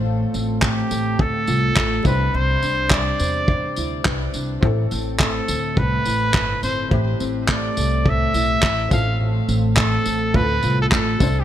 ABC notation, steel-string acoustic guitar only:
X:1
M:4/4
L:1/8
Q:"Swing 16ths" 1/4=105
K:Flyd
V:1 name="Steel-string acoustic guitar"
A,, C A, A A,, F A, C, | C, D G, c C, E G, D | A,, C A, A A,, E A, C | A,, C A, A A,, E A, A,, |
A,, C A, A A,, F A, C, |]